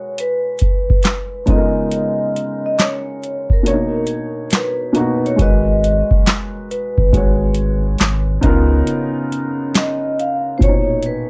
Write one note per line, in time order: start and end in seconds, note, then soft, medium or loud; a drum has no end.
0.00 1.46 G#3 medium
0.00 1.50 F#4 medium
0.00 1.50 A#4 medium
0.00 1.50 B4 medium
0.00 0.15 C#5 medium
0.18 1.53 B4 medium
0.18 closed hi-hat medium
0.59 kick medium
0.59 closed hi-hat medium
0.90 kick medium
1.03 snare medium
1.03 clap medium
1.03 closed hi-hat medium
1.46 2.89 C#3 medium
1.46 2.89 G#3 medium
1.46 2.89 B3 medium
1.46 2.90 D#4 medium
1.46 2.90 F4 medium
1.46 kick medium
1.46 closed hi-hat medium
1.50 1.58 A4 medium
1.50 2.65 D#5 medium
1.57 2.94 A#4 medium
1.92 closed hi-hat medium
2.36 closed hi-hat medium
2.66 2.80 D#5 medium
2.79 3.54 C#5 medium
2.79 snare loud
2.79 clap medium
2.79 closed hi-hat medium
3.24 closed hi-hat medium
3.50 4.78 A#4 medium
3.50 kick medium
3.63 4.74 B2 medium
3.63 4.75 A#3 medium
3.63 3.74 D4 soft
3.63 closed hi-hat medium
3.68 4.76 C#5 medium
3.73 4.79 D#4 medium
4.07 closed hi-hat medium
4.51 snare loud
4.51 clap medium
4.51 closed hi-hat medium
4.55 5.22 B4 medium
4.93 5.29 B2 medium
4.93 5.30 A#3 medium
4.93 5.31 D#4 medium
4.93 closed hi-hat medium
4.97 5.32 F#4 medium
5.26 5.41 C#5 medium
5.26 closed hi-hat soft
5.36 6.03 G#1 loud
5.36 6.65 G#3 medium
5.36 6.66 F#4 medium
5.36 6.67 A#4 medium
5.36 kick loud
5.36 closed hi-hat medium
5.41 6.67 B4 medium
5.41 6.24 D#5 medium
5.84 closed hi-hat medium
6.11 6.24 F#1 medium
6.11 kick medium
6.26 snare loud
6.26 clap medium
6.26 closed hi-hat medium
6.71 7.53 B4 medium
6.71 closed hi-hat medium
6.98 7.96 G#1 medium
6.98 kick medium
7.13 8.40 G#3 medium
7.13 8.41 F#4 medium
7.13 8.42 B4 medium
7.13 kick medium
7.13 closed hi-hat medium
7.17 8.42 C#5 medium
7.55 closed hi-hat medium
7.98 8.39 G#1 loud
7.98 snare loud
7.98 clap medium
7.98 closed hi-hat medium
8.41 8.82 C#2 medium
8.41 9.84 C#3 medium
8.41 9.85 B3 medium
8.41 9.85 D#4 medium
8.41 9.86 F4 medium
8.41 kick loud
8.41 closed hi-hat medium
8.46 9.87 A#4 loud
8.87 closed hi-hat medium
9.32 closed hi-hat medium
9.75 10.20 D#5 medium
9.75 snare loud
9.75 clap medium
9.75 closed hi-hat medium
10.19 10.55 F5 medium
10.19 closed hi-hat medium
10.58 11.30 A#2 medium
10.58 11.30 B2 medium
10.58 10.62 C5 medium
10.58 kick loud
10.62 10.70 C#4 soft
10.62 11.07 C#5 medium
10.62 11.30 C#5 medium
10.62 closed hi-hat medium
10.68 11.30 D#4 medium
11.03 11.30 B4 medium
11.03 closed hi-hat medium